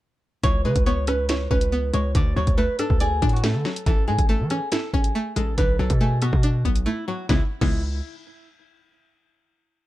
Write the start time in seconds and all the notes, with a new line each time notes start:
0.43 C#2 E3 C#5, kick, closed hi-hat
0.65 C#3 G#3 B4
0.76 C#2, kick, closed hi-hat
0.86 B3 C#5
1.07 C#4 B4, cross-stick, closed hi-hat
1.29 E4 C#5, snare, closed hi-hat
1.51 C#2 C#4 B4, kick
1.61 closed hi-hat
1.72 B3
1.93 C#2 G#3 C#5, closed hi-hat
2.15 D2 D3 D5, kick, closed hi-hat
2.36 D2 F#3 C#5
2.47 D2, kick, closed hi-hat
2.57 A3 B4
2.79 D4 A4, cross-stick, closed hi-hat
2.90 D2, kick
3.00 G#4 D5, closed hi-hat
3.22 A2 D4, kick, closed hi-hat
3.29 F#4, closed hi-hat
3.36 closed hi-hat
3.43 A3 A4, snare
3.54 D3
3.65 F#3, snare
3.76 closed hi-hat
3.86 A1 E3 A4, kick, closed hi-hat
4.08 A2 G#3 G#4
4.19 A1, kick, closed hi-hat
4.29 A3 A4
4.40 E3
4.50 C#4 G#4, cross-stick, closed hi-hat
4.72 E4 A4, snare, closed hi-hat
4.94 A1 C#4 G#4, kick
5.04 closed hi-hat
5.15 A3
5.36 A1 G#3 A4, closed hi-hat
5.58 B1 D3 B4, kick, closed hi-hat
5.79 B1 F#3 A4
5.90 B2, kick, closed hi-hat
6.01 A3 G#4
6.22 B3 F#4, cross-stick, closed hi-hat
6.33 B2, kick
6.43 D4, closed hi-hat
6.65 B1 B3, kick, closed hi-hat
6.76 closed hi-hat
6.86 A3 E4
7.08 F#3 F#4
7.29 C#2 C#3 E3 G#3 B3 E4, kick, snare
7.61 C#2 C#3 E3 G#3 B3 E4, kick, crash